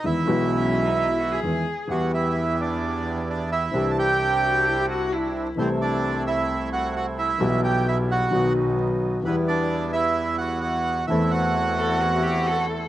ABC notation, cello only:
X:1
M:4/4
L:1/16
Q:1/4=130
K:E
V:1 name="Cello"
z4 C3 D2 E F G4- G | [K:Em] z16 | z6 F2 E G F2 E3 z | z16 |
z16 | z16 | z6 A2 F2 G2 A3 z |]